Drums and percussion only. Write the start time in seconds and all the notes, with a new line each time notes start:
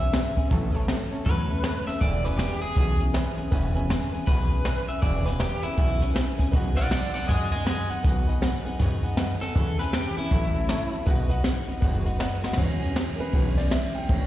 0.13 snare, closed hi-hat
0.37 kick, closed hi-hat
0.51 kick, closed hi-hat
0.74 closed hi-hat
0.88 snare, closed hi-hat
1.12 closed hi-hat
1.26 kick, closed hi-hat
1.50 closed hi-hat
1.64 snare, closed hi-hat
1.87 snare, closed hi-hat
2.01 kick, closed hi-hat
2.25 snare, closed hi-hat
2.39 snare, closed hi-hat
2.62 closed hi-hat
2.77 kick, closed hi-hat
3.00 closed hi-hat
3.14 snare, closed hi-hat
3.38 closed hi-hat
3.52 kick, closed hi-hat
3.76 closed hi-hat
3.90 snare, closed hi-hat
4.14 closed hi-hat
4.27 kick, snare, closed hi-hat
4.51 closed hi-hat
4.65 snare, closed hi-hat
4.89 closed hi-hat
5.02 kick, closed hi-hat
5.26 snare, closed hi-hat
5.40 snare, closed hi-hat
5.63 closed hi-hat
5.77 kick, closed hi-hat
6.02 snare, closed hi-hat
6.16 snare, closed hi-hat
6.39 kick, snare, closed hi-hat
6.53 kick, closed hi-hat
6.77 snare, closed hi-hat
6.91 snare, closed hi-hat
7.15 closed hi-hat
7.29 kick, closed hi-hat
7.53 closed hi-hat
7.67 snare, closed hi-hat
7.90 closed hi-hat
8.04 kick, closed hi-hat
8.28 closed hi-hat
8.42 snare, closed hi-hat
8.66 closed hi-hat
8.79 kick, snare, closed hi-hat
9.03 closed hi-hat
9.17 snare, closed hi-hat
9.41 snare, closed hi-hat
9.56 kick, closed hi-hat
9.80 snare, closed hi-hat
9.93 snare, closed hi-hat
10.17 closed hi-hat
10.31 kick, closed hi-hat
10.55 closed hi-hat
10.69 snare, closed hi-hat
10.92 closed hi-hat
11.06 kick, closed hi-hat
11.30 closed hi-hat
11.44 snare, closed hi-hat
11.68 closed hi-hat
11.82 kick, closed hi-hat
12.06 closed hi-hat
12.20 snare, closed hi-hat
12.44 snare
12.53 snare
12.58 kick, ride
12.82 ride
12.96 snare, ride
13.20 ride
13.33 kick, ride
13.58 snare, ride
13.71 snare, ride
13.95 ride
14.09 kick, ride